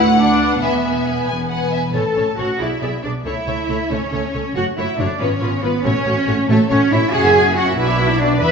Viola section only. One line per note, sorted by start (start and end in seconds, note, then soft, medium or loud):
0.16 0.59 D4 medium
0.60 1.69 B3 medium
1.94 2.03 C#4 soft
1.94 2.02 A4 soft
2.17 2.25 C#4 soft
2.17 2.25 A4 soft
2.39 2.47 C#4 soft
2.39 2.47 A4 soft
2.60 2.68 B3 soft
2.60 2.68 G#4 soft
2.82 2.90 B3 soft
2.82 2.90 G#4 soft
3.04 3.12 B3 soft
3.04 3.12 G#4 soft
3.25 3.34 A3 soft
3.25 3.33 A4 soft
3.48 3.56 A3 soft
3.48 3.56 A4 soft
3.69 3.77 A3 soft
3.69 3.77 A4 soft
3.91 3.99 A3 soft
3.91 3.99 A4 soft
4.12 4.20 A3 soft
4.12 4.20 A4 soft
4.34 4.42 A3 soft
4.34 4.42 A4 soft
4.55 4.63 A3 soft
4.55 4.64 F#4 soft
4.77 4.86 A3 soft
4.77 4.85 F#4 soft
4.99 5.07 A3 soft
4.99 5.07 F#4 soft
5.20 5.28 B3 soft
5.20 5.28 F4 soft
5.41 5.49 B3 medium
5.41 5.49 F4 medium
5.62 5.70 B3 soft
5.62 5.70 F4 soft
5.84 5.92 A3 medium
5.84 5.92 F#4 soft
6.06 6.14 A3 medium
6.06 6.14 F#4 medium
6.28 6.36 A3 soft
6.28 6.36 F#4 soft
6.49 6.57 A3 medium
6.49 6.57 F#4 medium
6.71 6.79 A3 medium
6.71 6.79 F#4 medium
6.92 7.00 A3 soft
6.92 7.00 F#4 soft
7.13 7.23 C#4 medium
7.13 7.23 F#4 medium
7.24 7.35 A#3 soft
7.24 7.35 E4 soft
7.34 7.45 C#4 medium
7.34 7.45 F#4 medium
7.46 7.56 A#3 medium
7.46 7.56 E4 soft
7.56 7.66 C#4 soft
7.56 7.66 F#4 medium
7.67 7.77 A#3 soft
7.67 7.77 E4 medium
7.77 7.86 D4 medium
7.77 7.87 F#4 medium
7.87 7.98 B3 medium
7.87 7.97 D4 medium
7.98 8.08 D4 medium
7.98 8.09 F#4 medium
8.09 8.20 B3 soft
8.09 8.19 D4 soft
8.20 8.30 D4 soft
8.20 8.30 F#4 soft
8.31 8.40 B3 medium
8.31 8.41 D4 medium
8.42 8.51 B3 medium
8.42 8.51 E4 medium